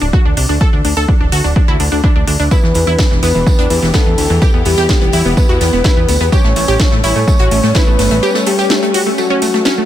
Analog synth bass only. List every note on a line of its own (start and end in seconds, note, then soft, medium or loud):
0.02 0.11 D1 medium
0.25 0.35 D2 medium
0.37 0.47 C2 loud
0.49 0.58 D2 medium
0.73 0.82 D2 medium
0.85 0.94 D2 loud
0.97 1.06 D2 medium
1.21 1.30 D1 medium
1.32 1.42 D2 medium
1.44 1.54 D1 medium
1.68 1.78 D2 medium
1.80 1.90 D2 loud
1.92 2.01 D2 medium
2.16 2.25 D2 medium
2.28 2.37 D2 loud
2.40 2.49 D2 medium
2.64 2.73 E2 medium
2.75 2.85 E2 loud
2.87 2.97 E2 medium
3.11 3.20 E1 medium
3.23 3.32 E2 medium
3.35 3.44 E1 medium
3.59 3.68 E2 medium
3.70 3.80 E2 loud
3.83 3.92 E1 loud
4.06 4.16 E2 medium
4.18 4.28 D2 loud
4.30 4.39 E2 medium
4.54 4.63 E2 medium
4.66 4.75 E2 medium
4.78 4.87 E2 medium
5.02 5.11 E1 medium
5.13 5.23 E2 loud
5.25 5.35 E1 medium
5.49 5.58 E2 medium
5.61 5.71 E2 loud
5.73 5.82 E1 medium
5.97 6.06 E2 medium
6.08 6.18 D2 loud
6.21 6.30 E2 medium
6.44 6.54 A1 medium
6.56 6.66 A1 medium
6.68 6.78 A1 medium
6.92 7.01 A2 medium
7.04 7.13 A1 loud
7.16 7.25 A2 medium
7.40 7.49 A1 medium
7.51 7.61 A1 loud
7.63 7.73 A2 medium
7.87 7.97 A1 medium
7.99 8.09 G1 loud
8.11 8.20 A1 medium